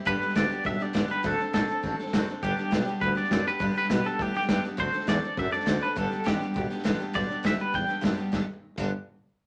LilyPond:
<<
  \new Staff \with { instrumentName = "Clean electric guitar" } { \time 4/4 \key g \major \tempo 4 = 203 b'4 d''4 e''8 d''4 b'8 | a'4 a'4. r4. | g'2 b'8 d''8 d''8 b'8~ | b'8 b'4 a'8 g'8 g'4 r8 |
c''4 d''4 e''8 d''4 b'8 | a'4 g'4. r4. | d''4 e''8 b'8 g''4 r4 | r1 | }
  \new Staff \with { instrumentName = "Steel-string acoustic guitar" } { \time 4/4 \key g \major <g, d g b d' g'>8 <g b d' g'>8 <g, d g b d' g'>8 <g b d' g'>8 <g b d' g'>8 <g b d' g'>8 <g, d g b d' g'>8 <g b d' g'>8 | <d fis c' d' a'>8 <c' d' a'>8 <d fis c' d' a'>8 <c' d' a'>8 <fis c' d' a'>8 <c' d' a'>8 <d fis c' d' a'>8 <c' d' a'>8 | <g, d g b d' g'>8 <g b d' g'>8 <g, d g b d' g'>8 <g b d' g'>8 <g b d' g'>8 <g b d' g'>8 <g, d g b d' g'>8 <g b d' g'>8 | <g, d g b d' g'>8 <g b d' g'>8 <g, d g b d' g'>8 <g b d' g'>8 <g b d' g'>8 <g b d' g'>8 <g, d g b d' g'>8 <g b d' g'>8 |
<d fis c' d' a'>8 <c' d' a'>8 <d fis c' d' a'>8 <c' d' a'>8 <fis c' d' a'>8 <c' d' a'>8 <d fis c' d' a'>8 <c' d' a'>8 | <g, d g b d' g'>8 <g b d' g'>8 <g, d g b d' g'>8 <g b d' g'>8 <g b d' g'>8 <g b d' g'>8 <g, d g b d' g'>8 <g b d' g'>8 | <g, d g b d' g'>8 <g b d' g'>8 <g, d g b d' g'>8 <g b d' g'>8 <g b d' g'>8 <g b d' g'>8 <g, d g b d' g'>8 <g b d' g'>8 | <g, d g b d' g'>8 r4 <g, d g b d' g'>8 r2 | }
  \new Staff \with { instrumentName = "Tuba" } { \clef bass \time 4/4 \key g \major g,8 g,8 d,8 d,8 b,,8 b,,8 g,,8 g,,8 | d,8 d,8 bes,,8 bes,,8 a,,8 a,,8 fis,,8 fis,,8 | g,,8 g,,8 b,,8 b,,8 d,8 r8 fis,8 fis,8 | g,8 g,8 b,8 b,8 a,8 a,8 g,8 g,8 |
d,8 d,8 e,8 e,8 fis,8 fis,8 d,8 d,8 | g,,8 g,,8 a,,8 a,,8 b,,8 b,,8 a,,8 a,,8 | b,,8 b,,8 d,8 d,8 e,8 e,8 fis,8 fis,8 | g,,8 r4 g,,8 r2 | }
  \new DrumStaff \with { instrumentName = "Drums" } \drummode { \time 4/4 <bd sn>8 sn16 sn16 <hhp bd sn>8 sn8 <bd sn>8 sn8 <hhp bd sn>8 sn8 | <bd sn>8 sn8 <hhp bd sn>8 sn8 <bd sn>8 sn16 sn16 <hhp bd sn>8 sn8 | <bd sn>8 sn8 <hhp bd sn>8 sn8 <bd sn>8 sn16 sn16 <hhp bd sn>8 sn8 | <bd sn>8 sn16 sn16 <hhp bd sn>8 sn8 <bd sn>8 sn16 sn16 <hhp bd sn>8 sn8 |
<bd sn>8 sn16 sn16 <hhp bd sn>8 sn8 <bd sn>8 sn16 sn16 <hhp bd sn>8 sn8 | <bd sn>8 sn8 <hhp bd sn>8 sn8 <bd sn>8 sn16 sn16 <hhp bd sn>8 sn8 | <bd sn>8 sn8 <hhp bd sn>8 sn8 <bd sn>8 sn8 <hhp bd sn>8 sn8 | <bd sn>4 r8 <cymc bd>8 r4 r4 | }
>>